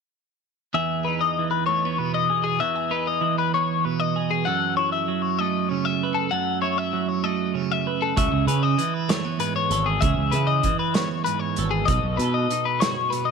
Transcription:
0.74 E2 G#4 E5
1.05 D#4 B4
1.21 D#5
1.39 E3
1.51 B4
1.66 A3 C#5
1.85 B3
1.98 B2 B4
2.14 D#5
2.30 G#4
2.44 G#4
2.60 E2 F#4 E5
2.76 G#4
2.91 D#4 B4
3.07 D#5
3.21 E3
3.38 B4
3.54 B3 C#5
3.85 B2 B4
4.00 D#5
4.16 G#4
4.31 G#4
4.45 F#2 A4 F#5
4.77 E4 C#5
4.92 E5
5.08 F#3
5.22 C#5
5.39 A3 D#5
5.69 C#3 C#5
5.85 E5
6.03 B4
6.15 A4
6.31 F#2 A4 F#5
6.62 E4 C#5
6.78 E5
6.93 F#3
7.09 C#5
7.24 A3 D#5
7.54 C#3 C#5
7.72 E5
7.87 B4
8.02 A4
8.16 C#2 C#3 F#4 E5, kick, closed hi-hat
8.32 C#2 G#4
8.47 C#3 C#4 B4, closed hi-hat
8.63 E4 D#5
8.78 E3, closed hi-hat
8.94 B4
9.09 A3 C#5, snare, closed hi-hat
9.25 B3
9.39 G#2 B4, closed hi-hat
9.56 C#5
9.70 G#1 A4, closed hi-hat
9.86 G#4
10.01 C#2 C#3 G#4 E5, kick, closed hi-hat
10.18 C#2
10.31 C#3 E4 B4, closed hi-hat
10.47 D#5
10.63 E3, kick, closed hi-hat
10.79 B4
10.94 B3 C#5, snare, closed hi-hat
11.24 G#2 B4, closed hi-hat
11.39 C#5
11.56 G#1 A4, closed hi-hat
11.71 G#4
11.86 B1 B2 D#4 F#4 D#5, kick, closed hi-hat
11.90 A4
12.03 B1
12.17 B2 B4, closed hi-hat
12.21 A4
12.34 D#5
12.50 D#4, closed hi-hat
12.65 B4
12.80 F#4 C#5, snare, closed hi-hat
13.10 B2 B4, closed hi-hat
13.25 D#5

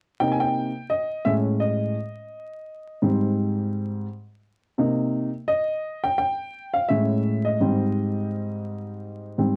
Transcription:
0.20 C3 A#3 D#4 G5
0.31 G#5
0.40 G5
0.90 D#5
1.25 A2 G#3 C#4 E5
1.60 D#5
3.02 G#2 G3 C4
4.78 C3 A#3 D#4
5.48 D#5
6.04 G5
6.18 G5
6.74 F5
6.89 A2 G#3 C#4 E5
7.45 D#5
7.60 G#2 G3 C4
9.38 G#2 G3 C4

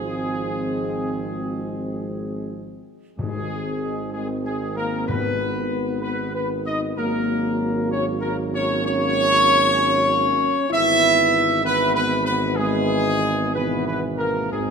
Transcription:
Already playing: G#1 F3 G#3 C4 G#4
3.18 G#1 G#2 D#3 G#3 C4 G#4
4.13 G#3 G#4
4.45 G#3 G#4
4.76 A#3 A#4
5.06 G#2 B3 B4
6.02 B3 B4
6.34 B3 B4
6.66 D#4 D#5
6.97 G#1 F#3 A#3 A#4
7.91 C#4 C#5
8.21 A#3 A#4
8.53 C#4 C#5
8.85 C#4 C#5
10.70 G#1 E3 B3 E4 E5
11.64 E3 B3 B4
11.95 B3 B4
12.25 B3 B4
12.56 E3 G#3 B3 G#4
13.53 B2 E3 B3 B4
13.86 B3 B4
14.17 A#3 A#4
14.51 G#1 G#2 D#3 G#3 C4 G#4
14.59 G#2

